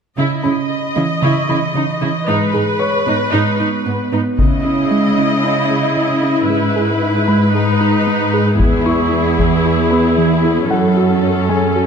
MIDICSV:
0, 0, Header, 1, 6, 480
1, 0, Start_track
1, 0, Key_signature, 4, "minor"
1, 0, Tempo, 526316
1, 159, Time_signature, 4, 2, 24, 8
1, 10821, End_track
2, 0, Start_track
2, 0, Title_t, "Grand piano"
2, 0, Program_c, 0, 0
2, 353, Control_c, 0, 64, 127
2, 396, Note_on_c, 0, 83, 27
2, 1120, Note_on_c, 0, 85, 30
2, 1351, Note_off_c, 0, 83, 0
2, 1365, Note_on_c, 0, 83, 35
2, 2095, Control_c, 0, 64, 0
2, 2254, Control_c, 0, 64, 127
2, 2523, Note_off_c, 0, 85, 0
2, 2549, Note_on_c, 0, 73, 29
2, 2549, Note_on_c, 0, 85, 43
2, 2765, Note_off_c, 0, 83, 0
2, 3957, Note_off_c, 0, 85, 0
2, 3958, Note_off_c, 0, 73, 0
2, 4015, Control_c, 0, 64, 0
2, 4172, Control_c, 0, 64, 127
2, 4953, Note_on_c, 0, 83, 28
2, 5937, Control_c, 0, 64, 0
2, 6070, Control_c, 0, 64, 127
2, 6359, Note_off_c, 0, 83, 0
2, 6636, Note_on_c, 0, 83, 44
2, 7856, Control_c, 0, 64, 0
2, 7990, Control_c, 0, 64, 127
2, 8041, Note_off_c, 0, 83, 0
2, 8080, Note_on_c, 0, 85, 47
2, 9032, Note_on_c, 0, 71, 29
2, 9036, Note_on_c, 0, 83, 33
2, 9483, Note_off_c, 0, 85, 0
2, 9759, Note_on_c, 0, 69, 27
2, 9763, Note_on_c, 0, 78, 38
2, 9777, Control_c, 0, 64, 0
2, 9936, Control_c, 0, 64, 127
2, 10439, Note_off_c, 0, 71, 0
2, 10441, Note_off_c, 0, 83, 0
2, 10482, Note_on_c, 0, 80, 37
2, 10485, Note_on_c, 0, 68, 24
2, 10821, Note_off_c, 0, 68, 0
2, 10821, Note_off_c, 0, 69, 0
2, 10821, Note_off_c, 0, 78, 0
2, 10821, Note_off_c, 0, 80, 0
2, 10821, End_track
3, 0, Start_track
3, 0, Title_t, "Viola section"
3, 0, Program_c, 1, 48
3, 168, Note_on_c, 1, 64, 40
3, 170, Note_on_c, 1, 75, 37
3, 387, Note_off_c, 1, 64, 0
3, 401, Note_on_c, 1, 64, 27
3, 474, Note_off_c, 1, 64, 0
3, 875, Note_on_c, 1, 64, 28
3, 948, Note_off_c, 1, 64, 0
3, 1116, Note_on_c, 1, 64, 42
3, 1340, Note_off_c, 1, 64, 0
3, 1357, Note_on_c, 1, 64, 39
3, 1430, Note_off_c, 1, 64, 0
3, 1600, Note_on_c, 1, 63, 37
3, 1673, Note_off_c, 1, 63, 0
3, 1838, Note_on_c, 1, 64, 37
3, 1911, Note_off_c, 1, 64, 0
3, 2048, Note_off_c, 1, 75, 0
3, 2079, Note_on_c, 1, 63, 43
3, 2079, Note_on_c, 1, 71, 47
3, 2302, Note_off_c, 1, 63, 0
3, 2316, Note_on_c, 1, 63, 35
3, 2389, Note_off_c, 1, 63, 0
3, 2800, Note_on_c, 1, 63, 36
3, 2873, Note_off_c, 1, 63, 0
3, 3029, Note_on_c, 1, 63, 49
3, 3257, Note_off_c, 1, 63, 0
3, 3277, Note_on_c, 1, 63, 36
3, 3350, Note_off_c, 1, 63, 0
3, 3527, Note_on_c, 1, 59, 30
3, 3600, Note_off_c, 1, 59, 0
3, 3766, Note_on_c, 1, 63, 33
3, 3816, Note_off_c, 1, 71, 0
3, 3839, Note_off_c, 1, 63, 0
3, 4001, Note_on_c, 1, 75, 39
3, 4003, Note_on_c, 1, 64, 37
3, 5883, Note_off_c, 1, 75, 0
3, 5913, Note_on_c, 1, 71, 43
3, 6844, Note_off_c, 1, 64, 0
3, 6876, Note_on_c, 1, 63, 50
3, 7799, Note_off_c, 1, 71, 0
3, 7838, Note_off_c, 1, 63, 0
3, 7838, Note_on_c, 1, 64, 47
3, 7840, Note_on_c, 1, 68, 47
3, 9722, Note_off_c, 1, 64, 0
3, 9723, Note_off_c, 1, 68, 0
3, 9760, Note_on_c, 1, 61, 37
3, 9760, Note_on_c, 1, 69, 43
3, 10821, Note_off_c, 1, 61, 0
3, 10821, Note_off_c, 1, 69, 0
3, 10821, End_track
4, 0, Start_track
4, 0, Title_t, "Synth pluck"
4, 0, Program_c, 2, 84
4, 161, Note_on_c, 2, 49, 67
4, 305, Note_off_c, 2, 49, 0
4, 399, Note_on_c, 2, 61, 46
4, 543, Note_off_c, 2, 61, 0
4, 878, Note_on_c, 2, 52, 49
4, 1022, Note_off_c, 2, 52, 0
4, 1115, Note_on_c, 2, 49, 70
4, 1260, Note_off_c, 2, 49, 0
4, 1360, Note_on_c, 2, 52, 46
4, 1503, Note_off_c, 2, 52, 0
4, 1597, Note_on_c, 2, 52, 43
4, 1741, Note_off_c, 2, 52, 0
4, 1838, Note_on_c, 2, 52, 48
4, 1982, Note_off_c, 2, 52, 0
4, 2077, Note_on_c, 2, 56, 76
4, 2222, Note_off_c, 2, 56, 0
4, 2315, Note_on_c, 2, 68, 49
4, 2460, Note_off_c, 2, 68, 0
4, 2797, Note_on_c, 2, 59, 53
4, 2941, Note_off_c, 2, 59, 0
4, 3040, Note_on_c, 2, 56, 68
4, 3184, Note_off_c, 2, 56, 0
4, 3278, Note_on_c, 2, 59, 45
4, 3422, Note_off_c, 2, 59, 0
4, 3522, Note_on_c, 2, 59, 48
4, 3665, Note_off_c, 2, 59, 0
4, 3761, Note_on_c, 2, 59, 51
4, 3904, Note_off_c, 2, 59, 0
4, 4005, Note_on_c, 2, 49, 72
4, 4147, Note_off_c, 2, 49, 0
4, 4238, Note_on_c, 2, 61, 47
4, 4382, Note_off_c, 2, 61, 0
4, 4479, Note_on_c, 2, 56, 51
4, 4623, Note_off_c, 2, 56, 0
4, 4722, Note_on_c, 2, 49, 68
4, 4865, Note_off_c, 2, 49, 0
4, 4966, Note_on_c, 2, 61, 50
4, 5108, Note_off_c, 2, 61, 0
4, 5206, Note_on_c, 2, 56, 46
4, 5348, Note_off_c, 2, 56, 0
4, 5445, Note_on_c, 2, 49, 67
4, 5587, Note_off_c, 2, 49, 0
4, 5685, Note_on_c, 2, 61, 46
4, 5827, Note_off_c, 2, 61, 0
4, 5924, Note_on_c, 2, 56, 71
4, 6067, Note_off_c, 2, 56, 0
4, 6165, Note_on_c, 2, 68, 47
4, 6307, Note_off_c, 2, 68, 0
4, 6404, Note_on_c, 2, 63, 51
4, 6546, Note_off_c, 2, 63, 0
4, 6642, Note_on_c, 2, 56, 68
4, 6785, Note_off_c, 2, 56, 0
4, 6882, Note_on_c, 2, 68, 49
4, 7025, Note_off_c, 2, 68, 0
4, 7121, Note_on_c, 2, 63, 51
4, 7264, Note_off_c, 2, 63, 0
4, 7363, Note_on_c, 2, 56, 62
4, 7505, Note_off_c, 2, 56, 0
4, 7603, Note_on_c, 2, 68, 53
4, 7746, Note_off_c, 2, 68, 0
4, 7841, Note_on_c, 2, 52, 75
4, 7984, Note_off_c, 2, 52, 0
4, 8079, Note_on_c, 2, 64, 50
4, 8223, Note_off_c, 2, 64, 0
4, 8321, Note_on_c, 2, 59, 54
4, 8464, Note_off_c, 2, 59, 0
4, 8566, Note_on_c, 2, 52, 69
4, 8708, Note_off_c, 2, 52, 0
4, 8802, Note_on_c, 2, 64, 49
4, 8945, Note_off_c, 2, 64, 0
4, 9045, Note_on_c, 2, 59, 46
4, 9187, Note_off_c, 2, 59, 0
4, 9284, Note_on_c, 2, 52, 60
4, 9426, Note_off_c, 2, 52, 0
4, 9528, Note_on_c, 2, 64, 53
4, 9669, Note_off_c, 2, 64, 0
4, 9765, Note_on_c, 2, 54, 71
4, 9907, Note_off_c, 2, 54, 0
4, 10003, Note_on_c, 2, 66, 47
4, 10146, Note_off_c, 2, 66, 0
4, 10240, Note_on_c, 2, 61, 48
4, 10383, Note_off_c, 2, 61, 0
4, 10483, Note_on_c, 2, 54, 69
4, 10626, Note_off_c, 2, 54, 0
4, 10725, Note_on_c, 2, 66, 46
4, 10821, Note_off_c, 2, 66, 0
4, 10821, End_track
5, 0, Start_track
5, 0, Title_t, "Cello section"
5, 0, Program_c, 3, 48
5, 160, Note_on_c, 3, 49, 44
5, 233, Note_off_c, 3, 49, 0
5, 404, Note_on_c, 3, 49, 31
5, 477, Note_off_c, 3, 49, 0
5, 881, Note_on_c, 3, 49, 33
5, 954, Note_off_c, 3, 49, 0
5, 1122, Note_on_c, 3, 49, 42
5, 1195, Note_off_c, 3, 49, 0
5, 1360, Note_on_c, 3, 49, 36
5, 1433, Note_off_c, 3, 49, 0
5, 1596, Note_on_c, 3, 49, 34
5, 1669, Note_off_c, 3, 49, 0
5, 1836, Note_on_c, 3, 49, 38
5, 1909, Note_off_c, 3, 49, 0
5, 2078, Note_on_c, 3, 44, 51
5, 2151, Note_off_c, 3, 44, 0
5, 2321, Note_on_c, 3, 44, 34
5, 2394, Note_off_c, 3, 44, 0
5, 2802, Note_on_c, 3, 44, 37
5, 2875, Note_off_c, 3, 44, 0
5, 3040, Note_on_c, 3, 44, 49
5, 3113, Note_off_c, 3, 44, 0
5, 3285, Note_on_c, 3, 44, 36
5, 3358, Note_off_c, 3, 44, 0
5, 3523, Note_on_c, 3, 44, 32
5, 3596, Note_off_c, 3, 44, 0
5, 3766, Note_on_c, 3, 44, 33
5, 3839, Note_off_c, 3, 44, 0
5, 4001, Note_on_c, 3, 49, 42
5, 5884, Note_off_c, 3, 49, 0
5, 5926, Note_on_c, 3, 44, 48
5, 7806, Note_off_c, 3, 44, 0
5, 7842, Note_on_c, 3, 40, 59
5, 9724, Note_off_c, 3, 40, 0
5, 9763, Note_on_c, 3, 42, 45
5, 10821, Note_off_c, 3, 42, 0
5, 10821, End_track
6, 0, Start_track
6, 0, Title_t, "Taiko and cinematic ensemble drums"
6, 4000, Note_on_c, 9, 41, 45
6, 4091, Note_off_c, 9, 41, 0
6, 7839, Note_on_c, 9, 41, 47
6, 7930, Note_off_c, 9, 41, 0
6, 8562, Note_on_c, 9, 41, 32
6, 8653, Note_off_c, 9, 41, 0
6, 10821, End_track
0, 0, End_of_file